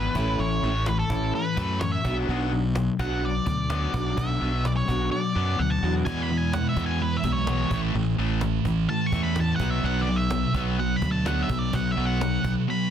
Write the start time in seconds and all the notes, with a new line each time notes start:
Already playing: E2 B2 E3 B4
0.15 A1 A2 E3 A3 C#4 E4, cajon bass
0.39 A1 A2 E3 A3 C#4 E4 C#5
0.63 A1 A2 E3 A3
0.86 A2 E3 B4, cajon slap
0.99 A4
1.10 A1 A2 E3 A3 C#4 E4, cajon bass
1.34 A2 E3 B4
1.57 F#2 A2 E3 A3, cajon bass
1.80 A2 E3 C#5, cajon slap
1.92 E5
2.04 B1 B2 F#3 B3 D4 F#4, cajon bass
2.28 B1 B2 F#3 B3 D4 F#4
2.52 B2 F#3
2.75 B2 F#3, cajon slap
2.99 B1 B2 F#3 B3 D4 F#4 F#5, cajon bass
3.22 B2 F#3 D5
3.46 D2 B2 F#3, cajon bass
3.70 B2 F#3 B3, cajon slap
3.93 B1 B2 F#3 B3 D4 F#4, cajon bass
4.17 B1 B2 F#3 B3 D4 F#4 E5, cajon bass
4.40 B1 B2 F#3 B3, cajon slap
4.64 B2 F#3 D5, cajon slap
4.77 C#5
4.88 B1 B2 F#3 B3 D4 F#4, cajon bass
5.12 B2 F#3 D5
5.35 F#2 B2 F#3 B3
5.59 D2 B2 F#3 F#5
5.70 A5
5.83 E2 B2 F#3 B3 D4 F#4
6.05 E2 B2 E3 G#3 B3 G#5, cajon bass
6.22 B5
6.31 E2 B2 E3 G#3
6.37 G#5
6.53 E2 B2 E3 G#3 F#5, cajon slap
6.69 E5
6.76 E2 B2 E3 G#3 B3, cajon bass
6.86 G#5
7.00 E2 B2 E3 G#3 B4
7.17 E5
7.24 B1 E2 B2 E3 G#3, cajon bass
7.32 C#5
7.47 E2 B2 E3 G#3 B3, cajon slap
7.71 A1 A2 E3 A3, cajon bass
7.95 A1 A2 E3
8.18 A1 A2 E3 A3, cajon slap
8.41 A2 E3, cajon slap
8.65 A1 A2 E3, cajon bass
8.89 A2 E3 A5
9.06 C#6
9.12 E2 A2 E3 A3, cajon bass
9.24 B5
9.36 A2 E3, cajon slap
9.40 A5
9.56 F#5, cajon bass
9.60 B1 B2 F#3 B3
9.70 E5
9.84 B1 B2 F#3 B3 F#5
10.01 D5
10.07 B2 F#3, cajon slap
10.16 E5
10.31 B2 F#3, cajon slap
10.54 B1 B2 F#3 B3, cajon bass
10.79 B2 F#3 F#5
10.96 B5
11.02 D2 B2 F#3, cajon bass
11.12 A5
11.25 B2 F#3 B3 F#5, cajon slap
11.42 E5
11.49 B1 B2 F#3, cajon bass
11.59 D5
11.73 B1 B2 F#3 F#5, cajon bass
11.91 E5
11.96 B1 B2 F#3 B3
12.05 F#5
12.20 B2 F#3, cajon slap
12.44 B1 B2 F#3, cajon bass
12.68 B2 F#3 B5